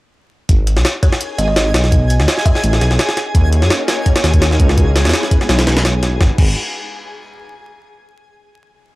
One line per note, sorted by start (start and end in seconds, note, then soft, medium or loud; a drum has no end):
0.49 0.78 G#1 medium
0.49 6.22 G#4 medium
0.49 6.21 G#5 medium
0.49 kick loud
0.49 closed hi-hat medium
0.67 closed hi-hat medium
0.77 0.84 B1 medium
0.77 snare medium
0.85 snare loud
0.85 closed hi-hat medium
1.03 1.37 C#5 medium
1.03 kick loud
1.03 closed hi-hat medium
1.12 snare medium
1.21 closed hi-hat medium
1.38 1.73 G#1 medium
1.38 1.44 D#5 medium
1.38 closed hi-hat medium
1.48 1.53 D#5 medium
1.56 snare loud
1.56 closed hi-hat medium
1.74 2.21 B1 loud
1.74 snare loud
1.74 closed hi-hat medium
1.84 snare soft
1.92 kick loud
1.92 closed hi-hat medium
2.10 closed hi-hat medium
2.19 2.27 D2 medium
2.19 snare medium
2.28 snare loud
2.28 closed hi-hat medium
2.38 snare soft
2.46 2.81 E5 loud
2.46 kick loud
2.46 closed hi-hat medium
2.55 snare soft
2.64 2.80 A1 loud
2.64 closed hi-hat medium
2.73 snare soft
2.81 2.90 B1 loud
2.81 snare soft
2.81 closed hi-hat medium
2.91 2.98 B1 medium
2.91 snare soft
2.99 snare loud
2.99 closed hi-hat medium
3.09 snare medium
3.17 snare soft
3.17 closed hi-hat medium
3.34 3.64 D#2 loud
3.34 4.40 A#3 loud
3.34 4.40 C#4 loud
3.34 4.40 D#4 medium
3.34 4.40 F#4 medium
3.34 4.40 C#5 loud
3.34 kick loud
3.34 closed hi-hat medium
3.53 closed hi-hat medium
3.62 3.70 F#2 medium
3.62 snare medium
3.70 snare loud
3.70 closed hi-hat medium
3.88 snare loud
3.88 closed hi-hat medium
4.06 kick medium
4.06 closed hi-hat medium
4.16 snare loud
4.16 closed hi-hat medium
4.24 4.58 D#2 medium
4.24 snare loud
4.24 closed hi-hat medium
4.34 kick medium
4.34 closed hi-hat medium
4.42 4.76 A#3 medium
4.42 4.75 C#4 medium
4.42 4.76 D#4 medium
4.42 4.76 F#4 medium
4.42 4.76 C#5 loud
4.42 snare loud
4.42 closed hi-hat medium
4.51 snare soft
4.60 5.07 C#2 loud
4.60 kick medium
4.60 closed hi-hat medium
4.69 snare soft
4.78 5.47 G#3 loud
4.78 5.47 B3 medium
4.78 5.47 C#4 medium
4.78 5.47 E4 loud
4.78 5.47 B4 loud
4.78 kick loud
4.78 closed hi-hat medium
4.96 snare loud
4.96 closed hi-hat medium
5.05 5.13 E2 medium
5.05 snare medium
5.05 closed hi-hat medium
5.09 snare medium
5.09 closed hi-hat medium
5.13 snare loud
5.13 closed hi-hat medium
5.23 snare soft
5.31 kick loud
5.31 closed hi-hat medium
5.41 snare soft
5.49 5.65 B1 loud
5.49 5.55 G#3 medium
5.49 5.55 B3 medium
5.49 5.55 C#4 medium
5.49 5.55 E4 medium
5.49 5.55 B4 medium
5.49 snare loud
5.49 closed hi-hat medium
5.59 snare loud
5.59 closed hi-hat medium
5.67 6.19 B1 medium
5.67 snare loud
5.67 closed hi-hat medium
5.77 snare loud
5.77 closed hi-hat medium
5.85 snare loud
5.85 closed hi-hat medium
6.03 6.08 G#3 loud
6.03 6.08 B3 medium
6.03 6.08 C#4 medium
6.03 6.08 E4 medium
6.03 6.08 B4 loud
6.03 snare soft
6.03 closed hi-hat medium
6.20 6.31 G#1 medium
6.20 6.34 D#4 medium
6.20 6.34 F#4 medium
6.20 6.34 G#4 medium
6.20 6.34 B4 medium
6.20 6.34 F#5 medium
6.20 kick loud
6.20 snare medium
6.38 6.55 G#1 loud
6.38 kick loud
6.38 crash medium